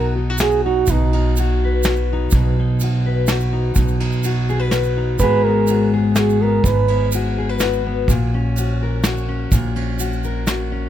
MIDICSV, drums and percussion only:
0, 0, Header, 1, 2, 480
1, 0, Start_track
1, 0, Key_signature, 5, "major"
1, 0, Tempo, 480384
1, 875, Time_signature, 3, 2, 24, 8
1, 10881, End_track
2, 0, Start_track
2, 0, Title_t, "Drums"
2, 380, Note_on_c, 9, 82, 96
2, 399, Note_on_c, 9, 38, 69
2, 399, Note_on_c, 9, 51, 45
2, 480, Note_off_c, 9, 82, 0
2, 499, Note_off_c, 9, 38, 0
2, 499, Note_off_c, 9, 51, 0
2, 512, Note_on_c, 9, 82, 28
2, 612, Note_off_c, 9, 82, 0
2, 866, Note_on_c, 9, 82, 86
2, 875, Note_on_c, 9, 51, 43
2, 877, Note_on_c, 9, 36, 78
2, 966, Note_off_c, 9, 82, 0
2, 975, Note_off_c, 9, 51, 0
2, 977, Note_off_c, 9, 36, 0
2, 1127, Note_on_c, 9, 51, 49
2, 1227, Note_off_c, 9, 51, 0
2, 1364, Note_on_c, 9, 82, 82
2, 1365, Note_on_c, 9, 51, 47
2, 1464, Note_off_c, 9, 82, 0
2, 1465, Note_off_c, 9, 51, 0
2, 1831, Note_on_c, 9, 82, 92
2, 1847, Note_on_c, 9, 38, 67
2, 1847, Note_on_c, 9, 51, 46
2, 1931, Note_off_c, 9, 82, 0
2, 1947, Note_off_c, 9, 38, 0
2, 1947, Note_off_c, 9, 51, 0
2, 1958, Note_on_c, 9, 82, 28
2, 2058, Note_off_c, 9, 82, 0
2, 2307, Note_on_c, 9, 82, 83
2, 2324, Note_on_c, 9, 36, 85
2, 2327, Note_on_c, 9, 51, 41
2, 2407, Note_off_c, 9, 82, 0
2, 2423, Note_off_c, 9, 36, 0
2, 2427, Note_off_c, 9, 51, 0
2, 2798, Note_on_c, 9, 82, 82
2, 2806, Note_on_c, 9, 51, 51
2, 2898, Note_off_c, 9, 82, 0
2, 2906, Note_off_c, 9, 51, 0
2, 3270, Note_on_c, 9, 82, 90
2, 3277, Note_on_c, 9, 38, 66
2, 3277, Note_on_c, 9, 51, 51
2, 3370, Note_off_c, 9, 82, 0
2, 3377, Note_off_c, 9, 38, 0
2, 3377, Note_off_c, 9, 51, 0
2, 3398, Note_on_c, 9, 82, 27
2, 3498, Note_off_c, 9, 82, 0
2, 3750, Note_on_c, 9, 82, 87
2, 3751, Note_on_c, 9, 51, 45
2, 3757, Note_on_c, 9, 36, 74
2, 3850, Note_off_c, 9, 82, 0
2, 3851, Note_off_c, 9, 51, 0
2, 3857, Note_off_c, 9, 36, 0
2, 3876, Note_on_c, 9, 82, 29
2, 3976, Note_off_c, 9, 82, 0
2, 3998, Note_on_c, 9, 51, 57
2, 4098, Note_off_c, 9, 51, 0
2, 4116, Note_on_c, 9, 82, 25
2, 4216, Note_off_c, 9, 82, 0
2, 4232, Note_on_c, 9, 82, 83
2, 4235, Note_on_c, 9, 51, 53
2, 4332, Note_off_c, 9, 82, 0
2, 4335, Note_off_c, 9, 51, 0
2, 4487, Note_on_c, 9, 82, 27
2, 4587, Note_off_c, 9, 82, 0
2, 4708, Note_on_c, 9, 38, 66
2, 4708, Note_on_c, 9, 51, 51
2, 4717, Note_on_c, 9, 82, 72
2, 4808, Note_off_c, 9, 38, 0
2, 4808, Note_off_c, 9, 51, 0
2, 4817, Note_off_c, 9, 82, 0
2, 4829, Note_on_c, 9, 82, 23
2, 4929, Note_off_c, 9, 82, 0
2, 5185, Note_on_c, 9, 82, 74
2, 5192, Note_on_c, 9, 36, 74
2, 5192, Note_on_c, 9, 51, 41
2, 5285, Note_off_c, 9, 82, 0
2, 5292, Note_off_c, 9, 36, 0
2, 5292, Note_off_c, 9, 51, 0
2, 5665, Note_on_c, 9, 51, 48
2, 5668, Note_on_c, 9, 82, 78
2, 5765, Note_off_c, 9, 51, 0
2, 5767, Note_off_c, 9, 82, 0
2, 6151, Note_on_c, 9, 38, 70
2, 6151, Note_on_c, 9, 51, 45
2, 6152, Note_on_c, 9, 82, 84
2, 6251, Note_off_c, 9, 38, 0
2, 6251, Note_off_c, 9, 51, 0
2, 6252, Note_off_c, 9, 82, 0
2, 6287, Note_on_c, 9, 82, 27
2, 6386, Note_off_c, 9, 82, 0
2, 6634, Note_on_c, 9, 36, 88
2, 6634, Note_on_c, 9, 51, 43
2, 6645, Note_on_c, 9, 82, 87
2, 6734, Note_off_c, 9, 36, 0
2, 6734, Note_off_c, 9, 51, 0
2, 6745, Note_off_c, 9, 82, 0
2, 6873, Note_on_c, 9, 51, 51
2, 6973, Note_off_c, 9, 51, 0
2, 7111, Note_on_c, 9, 51, 50
2, 7113, Note_on_c, 9, 82, 91
2, 7211, Note_off_c, 9, 51, 0
2, 7213, Note_off_c, 9, 82, 0
2, 7589, Note_on_c, 9, 82, 85
2, 7596, Note_on_c, 9, 38, 69
2, 7596, Note_on_c, 9, 51, 47
2, 7689, Note_off_c, 9, 82, 0
2, 7696, Note_off_c, 9, 38, 0
2, 7696, Note_off_c, 9, 51, 0
2, 7721, Note_on_c, 9, 82, 23
2, 7821, Note_off_c, 9, 82, 0
2, 8073, Note_on_c, 9, 51, 47
2, 8074, Note_on_c, 9, 36, 82
2, 8086, Note_on_c, 9, 82, 76
2, 8173, Note_off_c, 9, 51, 0
2, 8174, Note_off_c, 9, 36, 0
2, 8186, Note_off_c, 9, 82, 0
2, 8549, Note_on_c, 9, 51, 51
2, 8564, Note_on_c, 9, 82, 79
2, 8649, Note_off_c, 9, 51, 0
2, 8664, Note_off_c, 9, 82, 0
2, 9029, Note_on_c, 9, 38, 66
2, 9029, Note_on_c, 9, 51, 53
2, 9033, Note_on_c, 9, 82, 84
2, 9128, Note_off_c, 9, 38, 0
2, 9128, Note_off_c, 9, 51, 0
2, 9133, Note_off_c, 9, 82, 0
2, 9162, Note_on_c, 9, 82, 27
2, 9262, Note_off_c, 9, 82, 0
2, 9506, Note_on_c, 9, 51, 44
2, 9509, Note_on_c, 9, 36, 82
2, 9511, Note_on_c, 9, 82, 90
2, 9606, Note_off_c, 9, 51, 0
2, 9609, Note_off_c, 9, 36, 0
2, 9611, Note_off_c, 9, 82, 0
2, 9749, Note_on_c, 9, 51, 55
2, 9849, Note_off_c, 9, 51, 0
2, 9986, Note_on_c, 9, 82, 85
2, 9987, Note_on_c, 9, 51, 47
2, 10086, Note_off_c, 9, 82, 0
2, 10087, Note_off_c, 9, 51, 0
2, 10115, Note_on_c, 9, 82, 25
2, 10215, Note_off_c, 9, 82, 0
2, 10228, Note_on_c, 9, 82, 28
2, 10328, Note_off_c, 9, 82, 0
2, 10463, Note_on_c, 9, 38, 63
2, 10463, Note_on_c, 9, 51, 42
2, 10463, Note_on_c, 9, 82, 84
2, 10563, Note_off_c, 9, 38, 0
2, 10563, Note_off_c, 9, 51, 0
2, 10563, Note_off_c, 9, 82, 0
2, 10881, End_track
0, 0, End_of_file